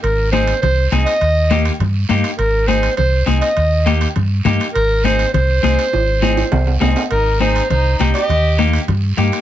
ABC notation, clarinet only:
X:1
M:4/4
L:1/8
Q:1/4=203
K:Ab
V:1 name="Clarinet"
B2 c2 c2 z e- | e3 z4 z | B2 c2 c2 z e- | e3 z4 z |
B2 c2 c4- | c6 z2 | B2 c2 c2 z e- | e3 z4 z |]